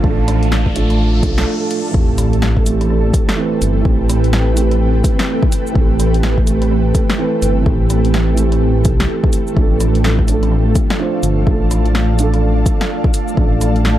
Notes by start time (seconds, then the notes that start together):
Already playing: A3 D4 A4 C5 D5 F5 A5, riser
0.00 A1 F3 A3, kick
0.05 D4 A4
0.28 cross-stick, closed hi-hat
0.43 closed hi-hat
0.52 snare
0.66 kick
0.73 F3 A3 D4, closed hi-hat
0.77 A4
0.90 cross-stick, closed hi-hat
1.19 F3 A3
1.23 B1 D4 A4, kick, closed hi-hat
1.38 snare, closed hi-hat
1.71 closed hi-hat
1.91 A1 E3 A3, kick, sub drop
1.96 C4 G4
2.16 C4, cross-stick, closed hi-hat, cabasa
2.33 closed hi-hat
2.41 B4, snare
2.57 kick
2.63 E3 A3 G5, closed hi-hat, cabasa
2.68 C4 G4
2.81 cross-stick, closed hi-hat
2.90 cross-stick
3.14 kick, closed hi-hat, cabasa
3.29 cross-stick, snare
3.35 E3 A3 C4
3.40 B4
3.62 G1, closed hi-hat, cabasa
3.81 E3 A3
3.85 A1 C4, kick
3.89 G4
4.09 cross-stick, closed hi-hat, cabasa
4.24 closed hi-hat
4.33 snare
4.53 E3 A3
4.57 C4 G4, closed hi-hat, cabasa
4.71 cross-stick, closed hi-hat
5.04 kick, closed hi-hat, cabasa
5.19 snare, closed hi-hat
5.43 kick
5.52 closed hi-hat, cabasa
5.67 cabasa
5.72 A1 E3 A3, kick
5.77 C4 G4
6.00 cross-stick, closed hi-hat, cabasa
6.14 closed hi-hat
6.23 snare
6.38 kick
6.43 E3 A3
6.47 C4 G4, closed hi-hat, cabasa
6.62 cross-stick, closed hi-hat
6.71 cross-stick
6.95 kick, closed hi-hat, cabasa
7.10 cross-stick, snare
7.17 E3 A3 C4 B4
7.42 G1, closed hi-hat, cabasa
7.62 A1 E3 A3, kick
7.67 C4 G4
7.90 cross-stick, closed hi-hat, cabasa
8.05 closed hi-hat
8.14 snare
8.34 E3 A3, closed hi-hat, cabasa
8.39 C4 G4
8.52 cross-stick, closed hi-hat
8.85 B1, kick, closed hi-hat, cabasa
9.00 snare, closed hi-hat
9.24 kick
9.33 closed hi-hat, cabasa
9.47 cabasa
9.53 A1 F3 A3, kick
9.58 D4 A4
9.78 F5, cross-stick, closed hi-hat, cabasa
9.95 closed hi-hat
10.04 D5, snare
10.19 kick
10.24 F3 A3, closed hi-hat, cabasa
10.29 D4 A4
10.35 A5
10.43 cross-stick, closed hi-hat
10.52 cross-stick
10.75 kick, closed hi-hat, cabasa
10.90 cross-stick, snare
10.97 F3 A3 D4
11.01 C5
11.23 G1, closed hi-hat, cabasa
11.43 F3 A3
11.47 A1 D4 A4, kick
11.71 cross-stick, closed hi-hat, cabasa
11.86 closed hi-hat
11.95 snare
12.14 F3 A3
12.19 D4 A4, closed hi-hat, cabasa
12.34 cross-stick, closed hi-hat
12.66 kick, closed hi-hat, cabasa
12.81 snare, closed hi-hat
13.04 kick
13.14 closed hi-hat, cabasa
13.28 cabasa
13.33 A1 F3 A3, kick
13.39 D4 A4
13.61 cross-stick, closed hi-hat, cabasa
13.76 closed hi-hat
13.85 snare